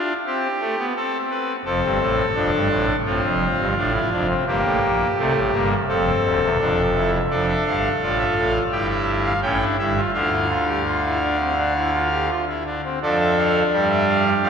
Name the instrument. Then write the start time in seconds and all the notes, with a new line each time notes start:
pipe organ
Already playing: D4 F4
0.26 C4 G4
0.60 A3
0.78 B3
0.96 C4 A4
1.30 B4
1.65 F1 F2 C4 A4
1.83 G1 G2
2.00 A1 A2
2.35 F1 F2 D4
2.52 G1 G2
2.70 A1 A2
3.05 A1 A2 C4 F4
3.23 F1 F2
3.59 G1 G2
3.76 A1 A2 D4
3.94 E4
4.11 F1 F2 D4
4.29 C4
4.47 G1 G2 A#3 G4
4.64 A1 A2
4.82 A#1 A#2
5.17 C2 C3 A3
5.35 A1 A2
5.52 G1 G2 A#3
5.88 F1 F2 C4 A4
6.24 D1 D2
6.41 E1 E2
6.59 F1 F2 D4
6.95 E4
7.30 F1 F2 D4 A4 D5
7.48 E5
7.66 G1 G2 F5
8.02 A1 A2 F4 D5
8.19 E5
8.36 A1 A2 F5
8.72 G1 G2 E4 G4 G5
8.89 E5
9.24 F5
9.42 A1 A2 C#4 E4 G5
9.61 D4
9.78 G1 G2 E4 E5
9.96 F4
10.14 D2 D3 D4 F4 F5
10.32 E4
10.49 F4
10.68 G4
10.85 F4
11.03 E4
11.21 D4
11.39 C4
11.57 D4
11.75 E4
11.93 F4
12.11 G4
12.29 F4
12.48 E4
12.65 D4
12.84 C4
13.02 F2 F3 D4 A4 D5
13.20 E5
13.37 F5
13.73 G2 G3 G4 D5
13.90 E5
14.08 F5
14.43 F2 F3 A3 F5